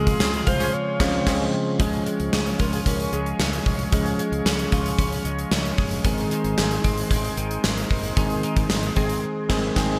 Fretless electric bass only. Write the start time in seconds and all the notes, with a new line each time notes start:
Already playing: C#2
0.21 C#2
0.47 C2
1.00 C#2
1.26 C#2
1.79 C#2
2.20 C#2
2.33 C#2
2.60 C#2
2.86 C#2
3.13 C#2
3.39 C#2
3.66 C2
3.93 C#2
4.32 C#2
4.45 C#2
4.72 C#2
4.98 C#2
5.25 C#2
5.51 C#2
5.78 F#1
6.05 G#1
6.44 G#1
6.58 G#1
6.84 G#1
7.11 G#1
7.37 G#1
7.64 G#1
7.91 F#1
8.17 G#1
8.56 G#1
8.70 G#1
8.97 G#1
9.50 G#1
9.76 G#1